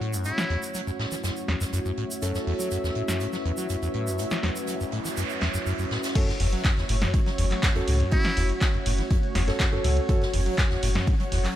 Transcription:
Already playing: A3 C#4 E4 F#4 A4 C#5 F#5
0.01 A2, closed hi-hat
0.13 F#2, shaker
0.24 A2 E4, closed hi-hat, shaker
0.34 E3 E5, snare, shaker
0.50 E2, closed hi-hat
0.63 shaker
0.74 F#3, closed hi-hat, shaker
0.87 F#2, shaker
0.99 A2, snare, closed hi-hat
1.12 E3, snare, shaker
1.24 F#2, snare, closed hi-hat, shaker
1.36 shaker
1.48 E2, snare, closed hi-hat
1.61 F#2, snare, shaker
1.73 F#2, closed hi-hat, shaker
1.85 F#2, shaker
1.97 A2, closed hi-hat
2.11 shaker
2.22 F#2 C#4 F#4 A4 B4, closed hi-hat, shaker
2.35 F#2, snare, shaker
2.47 E2, open hi-hat
2.59 F#3, shaker
2.71 F#2, closed hi-hat, shaker
2.84 E2, snare, shaker
2.95 A2, closed hi-hat
3.08 F#2, snare, closed hi-hat, shaker
3.20 A2, closed hi-hat, shaker
3.33 F#3, snare, shaker
3.45 E2, closed hi-hat
3.57 F#3, shaker
3.69 F#2, closed hi-hat, shaker
3.82 E2, closed hi-hat, shaker
3.94 A2, closed hi-hat
4.07 F#2, shaker
4.18 A2, closed hi-hat, noise sweep, shaker
4.30 E3, snare, shaker
4.43 E2, snare, closed hi-hat
4.56 shaker
4.67 F#3, closed hi-hat, shaker
4.80 F#2, shaker
4.92 A2, closed hi-hat
5.05 E3, snare, shaker
5.17 F#2, closed hi-hat, shaker
5.29 shaker
5.41 E2, snare, closed hi-hat
5.54 F#2, snare, shaker
5.66 F#2, open hi-hat, shaker
5.79 F#2, shaker
5.91 A2, snare, closed hi-hat
6.03 snare, closed hi-hat, shaker
6.15 F#2 A3 C#4 F#4 A4 C#5, kick, closed hi-hat, crash, ride
6.28 F#2, snare, closed hi-hat
6.40 F#1 E2, open hi-hat, ride
6.53 F#3, closed hi-hat
6.64 F#2, kick, snare, clap, closed hi-hat, ride
6.77 E2, snare, closed hi-hat
6.82 F#5
6.89 F#1 A2, closed hi-hat, open hi-hat, ride
7.02 F#2, snare, closed hi-hat
7.14 A2, kick, closed hi-hat, ride
7.26 F#3, snare, closed hi-hat
7.38 F#1 E2, closed hi-hat, open hi-hat, ride
7.51 F#3, clap, closed hi-hat
7.63 F#2, kick, snare, clap, closed hi-hat, ride
7.75 E2 C#4 F#4 A4, closed hi-hat
7.88 C#2 A2, closed hi-hat, open hi-hat, ride
8.00 F#2, closed hi-hat
8.11 A2 C#4 E4 F#4 C#5, kick, closed hi-hat, ride
8.25 E3, snare, closed hi-hat
8.37 F#1 E2, closed hi-hat, open hi-hat, ride
8.49 closed hi-hat
8.61 F#3, kick, snare, clap, closed hi-hat, ride
8.74 F#2, closed hi-hat
8.86 F#1 A2, closed hi-hat, open hi-hat, ride
8.98 E3, snare, closed hi-hat
9.11 F#2, kick, closed hi-hat, ride
9.23 closed hi-hat
9.35 F#1 E2, snare, closed hi-hat, open hi-hat, ride
9.48 F#2 C#4 F#4 A4, snare, closed hi-hat
9.60 F#2, kick, snare, clap, closed hi-hat, ride
9.72 F#2 C#4 F#4 A4, closed hi-hat
9.84 C#2 A2 C#4 F#4 A4, closed hi-hat, open hi-hat, ride
9.97 closed hi-hat
10.09 F#2 C#4 F#4 A4, kick, closed hi-hat, ride
10.22 F#2, snare, closed hi-hat
10.34 F#1 E2, open hi-hat, ride
10.46 F#3, closed hi-hat
10.58 F#2, kick, snare, clap, closed hi-hat, ride
10.70 E2, snare, closed hi-hat
10.83 F#1 A2, closed hi-hat, open hi-hat, ride
10.95 F#2, snare, closed hi-hat
11.07 A2, kick, closed hi-hat, open hi-hat, ride
11.20 F#3, closed hi-hat
11.32 F#1 E2, snare, open hi-hat, ride
11.44 F#3, clap, closed hi-hat, open hi-hat

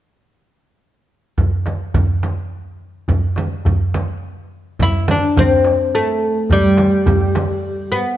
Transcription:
1.38 frame drum, darbuka dum
1.66 darbuka tek, frame drum
1.94 darbuka dum, frame drum
2.23 darbuka tek, frame drum
2.38 darbuka ka
3.08 darbuka dum, frame drum
3.36 darbuka tek, frame drum
3.65 darbuka dum, frame drum
3.94 darbuka tek, frame drum
4.09 darbuka ka
4.79 E4, darbuka dum, frame drum
5.08 D4, darbuka tek, frame drum
5.36 C4, darbuka dum, frame drum
5.64 darbuka tek
5.95 A3
6.35 darbuka ka
6.50 G3, darbuka dum, frame drum
6.77 darbuka tek, frame drum
7.06 darbuka dum, frame drum
7.35 darbuka tek, frame drum
7.92 B3
8.07 darbuka ka

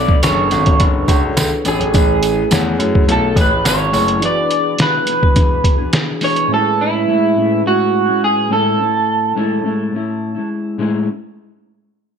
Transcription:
Already playing: B1 B3 D4 F#4 A4 B4 D5
0.08 kick
0.22 F#1 B3 D4 A4 C#5, snare, closed hi-hat, tambourine
0.50 G#1 B3 D4 A4 C#5, snare, closed hi-hat, tambourine
0.66 kick, closed hi-hat
0.79 F#1 B3 D4 A4 C#5, kick, closed hi-hat
1.07 C#2 D4 F#4 A4 C#5, kick, closed hi-hat, tambourine
1.23 D4 A4 C#5
1.37 C#2, snare, closed hi-hat, tambourine
1.64 A1 B3 D4 G#4 A4 C#5, closed hi-hat, tambourine
1.80 A1, closed hi-hat
1.92 A1 A3 C#4 E4 G#4, kick, closed hi-hat, tambourine
1.96 B4 C#5
2.23 closed hi-hat, tambourine
2.50 E2 A3 E4 G#4 C#5, snare, closed hi-hat, tambourine
2.78 F#2 A3 E4 G#4 C#5, closed hi-hat
2.95 kick
3.06 B1 A3 E4 G#4 C#5, closed hi-hat
3.12 A4
3.35 A1 C#4 E4 G#4 B4, kick, closed hi-hat, tambourine
3.41 B4
3.50 E4 G#4 C#5
3.65 G#1 C#5, snare, closed hi-hat, tambourine
3.92 F#1 A3 E4 G#4 C#5, open hi-hat, tambourine
4.08 closed hi-hat
4.20 E3 B3 D4 F#4 G#4, closed hi-hat
4.24 G#4 B4 D5
4.51 closed hi-hat
4.78 E3 B3 D4 G#4 B4, snare, closed hi-hat
5.07 E3 B3 D4 G#4, closed hi-hat
5.23 kick
5.34 E3 B3 D4 G#4, kick, closed hi-hat
5.64 kick, closed hi-hat
5.78 B3 D4 G#4
5.93 snare, closed hi-hat
6.21 E3 B3 D4 G#4 C#5, open hi-hat
6.36 closed hi-hat
6.48 A2 G#3 C#4 E4
6.52 C#4 E4 G#4 A4 B4
6.81 E4
7.07 A2 G#3 C#4 E4
7.36 A2 G#3 C#4 E4
7.64 A2 G#3 C#4 E4 F#4
8.06 G#3 C#4 E4
8.24 G#4
8.49 A2 G#3 C#4 E4 A4
8.77 A2 C#4
8.81 E4
9.35 A2 G#3 C#4 E4
9.63 A2 G#3 C#4 E4
9.92 A2 C#4 E4
10.35 G#3 C#4 E4
10.78 A2 G#3 C#4 E4

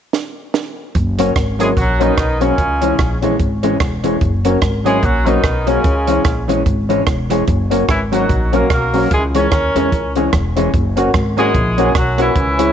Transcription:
0.13 snare
0.54 snare
0.95 F#1, kick, closed hi-hat
1.19 F#3 A#3 C#4 F#4 A#4 C#5, closed hi-hat
1.36 G#1, kick, cross-stick, closed hi-hat
1.59 F#3 G#3 A#3 C#4 E4 F#4 G#4 A#4 C#5, closed hi-hat
1.77 A#1 F#3 C#4 F#4, kick, closed hi-hat
2.00 D#3 F#3 A#3 B3 C#4 D#4 F#4 A#4 C#5, closed hi-hat
2.17 B1, kick, cross-stick, closed hi-hat
2.40 C#3 F#3 G#3 A#3 C#4 F#4 A#4 C#5, closed hi-hat
2.58 C#2, kick, closed hi-hat
2.81 E3 G#3 C#4 E4 G#4 C#5, closed hi-hat
2.99 A#1, kick, cross-stick, closed hi-hat
3.22 E3 G#3 C#4 E4 G#4 C#5, closed hi-hat
3.40 G#1, kick, closed hi-hat
3.63 E3 G#3 C#4 E4 G#4 C#5, closed hi-hat
3.80 E1, kick, cross-stick, closed hi-hat
4.03 E3 G#3 C#4 E4 G#4 C#5, closed hi-hat
4.21 F#1, kick, closed hi-hat
4.45 F#3 A#3 C#4 F#4 A#4 C#5, closed hi-hat
4.62 G#1, kick, cross-stick, closed hi-hat
4.84 F#3 G#3 A#3 C#4 E4 F#4 G#4 A#4 C#5, closed hi-hat
5.03 A#1 F#3 C#4 F#4, kick, closed hi-hat
5.26 D#3 F#3 A#3 B3 C#4 D#4 F#4 A#4 C#5, closed hi-hat
5.44 B1, kick, cross-stick, closed hi-hat
5.67 C#3 F#3 G#3 A#3 C#4 F#4 A#4 C#5, closed hi-hat
5.84 C#2, kick, closed hi-hat
6.07 E3 G#3 C#4 E4 G#4 C#5, closed hi-hat
6.25 A#1, kick, cross-stick, closed hi-hat
6.48 E3 G#3 C#4 E4 G#4 C#5, closed hi-hat
6.66 G#1, kick, closed hi-hat
6.89 E3 G#3 C#4 E4 G#4 C#5, closed hi-hat
7.07 E1, kick, cross-stick, closed hi-hat
7.30 E3 G#3 C#4 E4 G#4 C#5, closed hi-hat
7.47 F#1, kick, closed hi-hat
7.70 F#3 A#3 C#4 F#4 A#4 C#5, closed hi-hat
7.88 G#1 E3 C#4 E4, kick, cross-stick, closed hi-hat
8.12 F#3 A#3 C#4 D#4 F#4 A#4 C#5, closed hi-hat
8.29 A#1, kick, closed hi-hat
8.52 F#3 A#3 C#4 F#4 A#4 C#5, closed hi-hat
8.70 B1 A#3 F#4 A#4, kick, cross-stick, closed hi-hat
8.93 F#3 A#3 C#4 F#4 A#4 C#5, open hi-hat
9.11 C#2 G#3 E4 G#4, kick, closed hi-hat
9.34 E3 G#3 C#4 E4 G#4 A#4 C#5, closed hi-hat
9.52 D#2, kick, cross-stick, closed hi-hat
9.75 E2 E3 G#3 C#4 E4 G#4 C#5, closed hi-hat
9.92 C#2, kick, closed hi-hat
10.15 E3 G#3 C#4 E4 G#4 C#5, closed hi-hat
10.33 E1, kick, cross-stick, closed hi-hat
10.56 E3 G#3 C#4 E4 G#4 C#5, closed hi-hat
10.74 F#1, kick, closed hi-hat
10.96 A#3 C#4 F#4 A#4 C#5, closed hi-hat
11.14 G#1, kick, cross-stick, closed hi-hat
11.37 G#3 A#3 C#4 E4 F#4 G#4 A#4 C#5, closed hi-hat
11.54 A#1, kick, closed hi-hat
11.78 A#3 C#4 F#4 A#4 C#5, closed hi-hat
11.95 B1 F#3 C#4 F#4, kick, cross-stick, closed hi-hat
12.18 E3 A#3 C#4 E4 F#4 A#4 C#5, closed hi-hat
12.35 C#2, kick, closed hi-hat
12.58 G#3 C#4 E4 G#4 C#5, closed hi-hat

